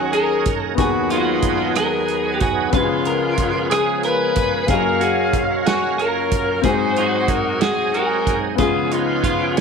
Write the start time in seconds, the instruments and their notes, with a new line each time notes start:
Already playing: upright piano D#2 D#3 C#4 D#4 F#4 A#4, tonewheel organ F#3 C#4 D#4 A#4, saxophone section C#4 F#4, clean electric guitar G#4
0.12 saxophone section G#4, clean electric guitar A#4, closed hi-hat
0.45 kick, closed hi-hat
0.64 clean electric guitar G#4
0.75 upright piano D#2 D#3 B3 D#4, tonewheel organ D#2 F#3 D#4, saxophone section F#4, kick, closed hi-hat
0.79 upright piano F#3 G#4, tonewheel organ B3 G#4, saxophone section B3, clean electric guitar G#4
1.10 saxophone section G#3 B3 F4, clean electric guitar F#4, closed hi-hat
1.42 kick, closed hi-hat
1.75 saxophone section B3 G#4, clean electric guitar A#4, cross-stick, closed hi-hat
2.08 closed hi-hat
2.34 clean electric guitar G4
2.39 saxophone section F#4, clean electric guitar G#4, kick, closed hi-hat
2.70 upright piano C#2 C#3 B3 C#4, saxophone section G#3 B3 F4, tonewheel organ B3 C#4 G#4, kick, closed hi-hat
2.74 tonewheel organ F3, upright piano F4 F#4, clean electric guitar B4
2.84 upright piano G#4
3.05 clean electric guitar A#4, closed hi-hat
3.38 kick, closed hi-hat
3.70 saxophone section G#4, clean electric guitar G#4, cross-stick, closed hi-hat
4.03 saxophone section F4 G#4 B4, clean electric guitar A#4, closed hi-hat
4.36 kick, closed hi-hat
4.67 upright piano F#1 F#2 A#3 C#4, tonewheel organ F#3 C#4 A#4 F5, saxophone section C#4 A#4 F5, clean electric guitar G#4, kick, closed hi-hat
4.71 upright piano F#3 F5
5.01 clean electric guitar F#4, saxophone section G#4, closed hi-hat
5.33 kick, closed hi-hat
5.66 saxophone section F#4, clean electric guitar G#4, snare, closed hi-hat
5.98 saxophone section C#4 F4 A#4, clean electric guitar A#4, closed hi-hat
6.31 kick, closed hi-hat
6.61 upright piano G#1 G#2 C4 D#4, tonewheel organ F#3 B3 D#4 G#4, clean electric guitar G#4, saxophone section C5, kick, closed hi-hat
6.66 saxophone section D#4 F#4, upright piano F#4 G#4
6.71 tonewheel organ C4
6.96 clean electric guitar F#4, closed hi-hat
7.28 saxophone section A#4, kick, closed hi-hat
7.61 clean electric guitar F#4, saxophone section G#4, snare, closed hi-hat
7.94 saxophone section D#4 F#4 A#4, clean electric guitar G#4, closed hi-hat
8.27 kick, closed hi-hat
8.56 upright piano C#2 C#3 B3 C#4, tonewheel organ E3 B3 C#4 G#4, saxophone section B3 G#4, clean electric guitar F4, kick, closed hi-hat
8.60 saxophone section F4, upright piano F4 G#4
8.66 tonewheel organ F3
8.91 saxophone section G#3 B3 F4, clean electric guitar D#4, closed hi-hat
9.24 clean electric guitar F4, kick, closed hi-hat
9.55 clean electric guitar C#4, saxophone section G#4, closed hi-hat